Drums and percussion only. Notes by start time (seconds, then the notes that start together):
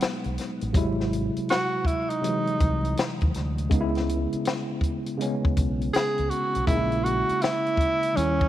0.01 snare, closed hi-hat
0.24 closed hi-hat
0.38 snare, closed hi-hat
0.61 closed hi-hat
0.74 kick, closed hi-hat
1.00 snare
1.13 closed hi-hat
1.36 closed hi-hat
1.49 snare, closed hi-hat
1.85 kick, closed hi-hat
2.10 closed hi-hat
2.24 closed hi-hat
2.47 closed hi-hat
2.60 kick, closed hi-hat
2.85 closed hi-hat
2.97 snare, closed hi-hat
3.21 kick, closed hi-hat
3.34 snare, closed hi-hat
3.58 closed hi-hat
3.71 kick, closed hi-hat
3.95 snare, closed hi-hat
4.09 closed hi-hat
4.33 closed hi-hat
4.45 snare, closed hi-hat
4.81 kick, closed hi-hat
5.06 closed hi-hat
5.21 closed hi-hat
5.45 kick
5.57 kick, closed hi-hat
5.81 closed hi-hat
5.94 snare, closed hi-hat
6.18 closed hi-hat
6.31 closed hi-hat
6.55 closed hi-hat
6.67 kick, closed hi-hat
6.92 closed hi-hat
7.06 closed hi-hat
7.29 closed hi-hat
7.42 snare, closed hi-hat
7.66 closed hi-hat
7.77 kick, closed hi-hat
8.03 closed hi-hat
8.17 closed hi-hat
8.41 kick